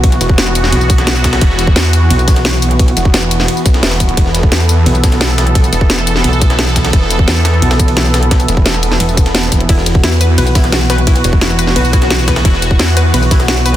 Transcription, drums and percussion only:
0.04 kick, closed hi-hat, ride
0.12 closed hi-hat, ride, tambourine
0.21 closed hi-hat, ride, tambourine
0.29 kick
0.38 snare, closed hi-hat, ride
0.47 snare, tambourine
0.55 closed hi-hat, ride, tambourine
0.64 snare
0.72 closed hi-hat, ride
0.81 tambourine
0.90 kick, closed hi-hat, ride, tambourine
0.98 snare, closed hi-hat
1.07 snare, closed hi-hat, ride
1.16 snare, tambourine
1.24 kick, snare, open hi-hat, ride, tambourine
1.33 snare, closed hi-hat, ride
1.41 kick, closed hi-hat, ride
1.50 snare
1.59 snare, closed hi-hat, ride, tambourine
1.67 kick
1.76 snare, closed hi-hat, ride
1.85 tambourine
1.93 closed hi-hat, ride, tambourine
2.10 closed hi-hat, ride
2.19 ride, tambourine
2.28 kick, snare, closed hi-hat, open hi-hat, tambourine
2.36 snare, closed hi-hat
2.45 snare, closed hi-hat, ride
2.54 ride, tambourine
2.62 open hi-hat, ride, tambourine
2.71 closed hi-hat
2.79 kick, closed hi-hat, ride
2.88 closed hi-hat, ride, tambourine
2.97 closed hi-hat, ride, tambourine
3.05 kick
3.14 snare, closed hi-hat, ride
3.23 snare, tambourine
3.31 closed hi-hat, ride, tambourine
3.40 snare
3.48 closed hi-hat, ride
3.57 tambourine
3.66 kick, closed hi-hat, ride, tambourine
3.74 snare, closed hi-hat
3.83 snare, closed hi-hat, ride
3.87 snare, ride
3.91 snare, ride, tambourine
4.00 kick, open hi-hat, ride, tambourine
4.09 closed hi-hat
4.17 kick, closed hi-hat, ride
4.26 snare
4.34 snare, closed hi-hat, ride, tambourine
4.43 kick
4.52 snare, closed hi-hat, ride
4.60 tambourine
4.69 closed hi-hat, ride, tambourine
4.86 closed hi-hat, ride
4.95 ride, tambourine
5.04 kick, snare, closed hi-hat, open hi-hat, tambourine
5.12 snare, closed hi-hat
5.21 snare, closed hi-hat, ride
5.29 ride, tambourine
5.38 snare, open hi-hat, ride, tambourine
5.47 closed hi-hat
5.55 kick, closed hi-hat, ride
5.64 closed hi-hat, ride, tambourine
5.73 closed hi-hat, ride, tambourine
5.81 kick
5.90 snare, closed hi-hat, ride
5.98 snare, tambourine
6.07 closed hi-hat, ride, tambourine
6.16 snare
6.24 closed hi-hat, ride
6.33 tambourine
6.41 kick, closed hi-hat, ride, tambourine
6.50 snare, closed hi-hat
6.59 snare, closed hi-hat, ride
6.67 snare, tambourine
6.76 kick, snare, open hi-hat, ride, tambourine
6.85 snare, closed hi-hat, ride
6.93 kick, closed hi-hat, ride
7.02 snare
7.10 snare, closed hi-hat, ride, tambourine
7.19 kick
7.28 snare, closed hi-hat, ride
7.36 tambourine
7.45 snare, closed hi-hat, ride, tambourine
7.54 ride
7.62 closed hi-hat, ride
7.71 snare, ride, tambourine
7.79 kick, closed hi-hat, ride, tambourine
7.88 closed hi-hat, ride
7.97 snare, closed hi-hat, ride
8.05 ride, tambourine
8.14 snare, open hi-hat, ride, tambourine
8.23 closed hi-hat
8.31 kick, snare, closed hi-hat, ride
8.40 closed hi-hat, ride, tambourine
8.48 closed hi-hat, ride, tambourine
8.57 kick
8.66 snare, closed hi-hat, ride
8.74 snare, tambourine
8.83 closed hi-hat, ride, tambourine
8.91 snare
9.00 closed hi-hat, ride
9.09 tambourine
9.17 kick, closed hi-hat, ride, tambourine
9.26 snare, closed hi-hat
9.35 snare, closed hi-hat, ride
9.43 snare, tambourine
9.52 kick, snare, open hi-hat, ride, tambourine
9.60 closed hi-hat
9.69 kick, closed hi-hat, ride
9.78 snare
9.86 snare, closed hi-hat, ride, tambourine
9.95 kick
10.04 snare, closed hi-hat, ride
10.12 tambourine
10.21 closed hi-hat, ride, tambourine
10.38 closed hi-hat, ride
10.47 ride, tambourine
10.55 kick, snare, closed hi-hat, open hi-hat, ride, tambourine
10.64 snare, closed hi-hat
10.72 snare, closed hi-hat, ride
10.81 ride, tambourine
10.90 snare, open hi-hat, ride, tambourine
10.98 closed hi-hat
11.07 kick, closed hi-hat, ride
11.16 closed hi-hat, ride, tambourine
11.24 closed hi-hat, ride, tambourine
11.33 kick
11.41 snare, closed hi-hat, ride
11.50 snare, tambourine
11.59 closed hi-hat, ride, tambourine
11.67 snare
11.76 closed hi-hat, ride
11.85 tambourine
11.93 kick, closed hi-hat, ride, tambourine
12.02 snare, closed hi-hat
12.10 snare, closed hi-hat, ride
12.19 snare, tambourine
12.28 kick, snare, open hi-hat, ride, tambourine
12.36 snare, closed hi-hat, ride
12.45 kick, closed hi-hat, ride
12.53 snare
12.62 snare, closed hi-hat, ride, tambourine
12.71 kick
12.79 snare, closed hi-hat, ride
12.88 tambourine
12.97 closed hi-hat, ride, tambourine
13.14 closed hi-hat, ride
13.22 ride, tambourine
13.31 kick, snare, closed hi-hat, open hi-hat, ride, tambourine
13.40 snare, closed hi-hat
13.48 snare, closed hi-hat, ride
13.57 ride, tambourine
13.66 open hi-hat, ride, tambourine

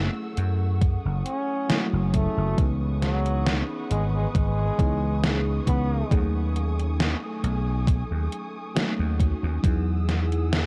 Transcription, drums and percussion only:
0.37 closed hi-hat
0.81 kick, closed hi-hat
1.26 closed hi-hat
1.70 snare, closed hi-hat
2.14 kick, closed hi-hat
2.58 kick, closed hi-hat
3.02 snare, closed hi-hat
3.26 closed hi-hat
3.47 snare, closed hi-hat
3.91 closed hi-hat
4.35 kick, closed hi-hat
4.79 kick, closed hi-hat
5.23 snare, closed hi-hat
5.67 kick, closed hi-hat
6.11 kick, closed hi-hat
6.56 closed hi-hat
6.79 closed hi-hat
7.00 snare, closed hi-hat
7.44 closed hi-hat
7.88 kick, closed hi-hat
8.32 closed hi-hat
8.77 snare, closed hi-hat
9.20 kick, closed hi-hat
9.64 kick, closed hi-hat
10.09 snare, closed hi-hat
10.32 closed hi-hat
10.53 snare, closed hi-hat

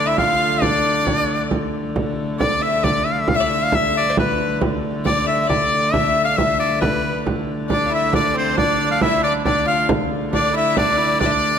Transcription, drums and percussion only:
0.18 frame drum
0.62 frame drum
0.84 frame drum
1.07 frame drum
1.30 frame drum
1.51 frame drum
1.74 frame drum
1.96 frame drum
2.40 frame drum
2.84 frame drum
3.06 frame drum
3.28 frame drum
3.72 frame drum
4.17 frame drum
4.39 frame drum
4.61 frame drum
5.05 frame drum
5.50 frame drum
5.72 frame drum
5.94 frame drum
6.38 frame drum
6.82 frame drum
7.27 frame drum
7.70 frame drum
8.13 frame drum
8.35 frame drum
8.58 frame drum
9.01 frame drum
9.45 frame drum
9.68 frame drum
9.89 frame drum
10.33 frame drum
10.77 frame drum
11.00 frame drum
11.21 frame drum
11.43 frame drum

